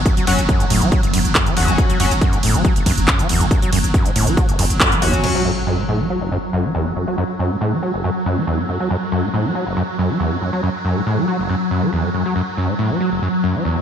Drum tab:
CC |----------------|----------------|----------------|x---------------|
RD |--x---x---x---x-|--x---x---x---x-|--x---x---x---x-|----------------|
HH |xxoxxxoxxxoxxxox|xxoxxxoxxxoxxxox|xxoxxxoxxxoxxxox|----------------|
CP |------------x---|------------x---|------------x---|----------------|
BD |o---o---o---o---|o---o---o-o-o---|o---o---o---o---|----------------|

CC |----------------|----------------|----------------|----------------|
RD |----------------|----------------|----------------|----------------|
HH |----------------|----------------|----------------|----------------|
CP |----------------|----------------|----------------|----------------|
BD |----------------|----------------|----------------|----------------|